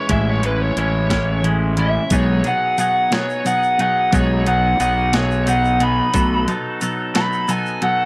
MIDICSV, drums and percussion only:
0, 0, Header, 1, 2, 480
1, 0, Start_track
1, 0, Tempo, 671141
1, 72, Time_signature, 6, 3, 24, 8
1, 5760, End_track
2, 0, Start_track
2, 0, Title_t, "Drums"
2, 65, Note_on_c, 9, 42, 104
2, 68, Note_on_c, 9, 36, 122
2, 136, Note_off_c, 9, 42, 0
2, 140, Note_off_c, 9, 36, 0
2, 309, Note_on_c, 9, 42, 72
2, 380, Note_off_c, 9, 42, 0
2, 550, Note_on_c, 9, 42, 65
2, 622, Note_off_c, 9, 42, 0
2, 789, Note_on_c, 9, 36, 67
2, 790, Note_on_c, 9, 42, 78
2, 794, Note_on_c, 9, 38, 98
2, 860, Note_off_c, 9, 36, 0
2, 862, Note_off_c, 9, 42, 0
2, 866, Note_off_c, 9, 38, 0
2, 1032, Note_on_c, 9, 42, 70
2, 1103, Note_off_c, 9, 42, 0
2, 1266, Note_on_c, 9, 42, 68
2, 1337, Note_off_c, 9, 42, 0
2, 1505, Note_on_c, 9, 42, 95
2, 1508, Note_on_c, 9, 36, 114
2, 1511, Note_on_c, 9, 82, 92
2, 1576, Note_off_c, 9, 42, 0
2, 1579, Note_off_c, 9, 36, 0
2, 1583, Note_off_c, 9, 82, 0
2, 1745, Note_on_c, 9, 42, 63
2, 1755, Note_on_c, 9, 82, 29
2, 1817, Note_off_c, 9, 42, 0
2, 1827, Note_off_c, 9, 82, 0
2, 1989, Note_on_c, 9, 42, 60
2, 1992, Note_on_c, 9, 82, 94
2, 2060, Note_off_c, 9, 42, 0
2, 2063, Note_off_c, 9, 82, 0
2, 2231, Note_on_c, 9, 42, 82
2, 2235, Note_on_c, 9, 38, 102
2, 2303, Note_off_c, 9, 42, 0
2, 2307, Note_off_c, 9, 38, 0
2, 2356, Note_on_c, 9, 82, 27
2, 2428, Note_off_c, 9, 82, 0
2, 2473, Note_on_c, 9, 42, 62
2, 2477, Note_on_c, 9, 82, 86
2, 2545, Note_off_c, 9, 42, 0
2, 2548, Note_off_c, 9, 82, 0
2, 2598, Note_on_c, 9, 82, 27
2, 2669, Note_off_c, 9, 82, 0
2, 2713, Note_on_c, 9, 42, 69
2, 2784, Note_off_c, 9, 42, 0
2, 2950, Note_on_c, 9, 42, 90
2, 2952, Note_on_c, 9, 36, 119
2, 2961, Note_on_c, 9, 82, 73
2, 3022, Note_off_c, 9, 42, 0
2, 3024, Note_off_c, 9, 36, 0
2, 3032, Note_off_c, 9, 82, 0
2, 3193, Note_on_c, 9, 42, 74
2, 3200, Note_on_c, 9, 82, 22
2, 3265, Note_off_c, 9, 42, 0
2, 3272, Note_off_c, 9, 82, 0
2, 3433, Note_on_c, 9, 42, 69
2, 3438, Note_on_c, 9, 82, 77
2, 3505, Note_off_c, 9, 42, 0
2, 3510, Note_off_c, 9, 82, 0
2, 3670, Note_on_c, 9, 42, 85
2, 3675, Note_on_c, 9, 38, 116
2, 3742, Note_off_c, 9, 42, 0
2, 3746, Note_off_c, 9, 38, 0
2, 3799, Note_on_c, 9, 82, 29
2, 3870, Note_off_c, 9, 82, 0
2, 3911, Note_on_c, 9, 42, 70
2, 3918, Note_on_c, 9, 82, 93
2, 3983, Note_off_c, 9, 42, 0
2, 3989, Note_off_c, 9, 82, 0
2, 4038, Note_on_c, 9, 82, 30
2, 4110, Note_off_c, 9, 82, 0
2, 4151, Note_on_c, 9, 42, 79
2, 4222, Note_off_c, 9, 42, 0
2, 4389, Note_on_c, 9, 42, 105
2, 4392, Note_on_c, 9, 36, 108
2, 4400, Note_on_c, 9, 82, 87
2, 4460, Note_off_c, 9, 42, 0
2, 4463, Note_off_c, 9, 36, 0
2, 4471, Note_off_c, 9, 82, 0
2, 4633, Note_on_c, 9, 42, 71
2, 4643, Note_on_c, 9, 82, 29
2, 4705, Note_off_c, 9, 42, 0
2, 4714, Note_off_c, 9, 82, 0
2, 4872, Note_on_c, 9, 42, 64
2, 4875, Note_on_c, 9, 82, 90
2, 4943, Note_off_c, 9, 42, 0
2, 4947, Note_off_c, 9, 82, 0
2, 5113, Note_on_c, 9, 42, 91
2, 5117, Note_on_c, 9, 38, 96
2, 5184, Note_off_c, 9, 42, 0
2, 5189, Note_off_c, 9, 38, 0
2, 5240, Note_on_c, 9, 82, 26
2, 5312, Note_off_c, 9, 82, 0
2, 5354, Note_on_c, 9, 82, 86
2, 5356, Note_on_c, 9, 42, 72
2, 5426, Note_off_c, 9, 82, 0
2, 5427, Note_off_c, 9, 42, 0
2, 5479, Note_on_c, 9, 82, 29
2, 5551, Note_off_c, 9, 82, 0
2, 5592, Note_on_c, 9, 42, 78
2, 5663, Note_off_c, 9, 42, 0
2, 5760, End_track
0, 0, End_of_file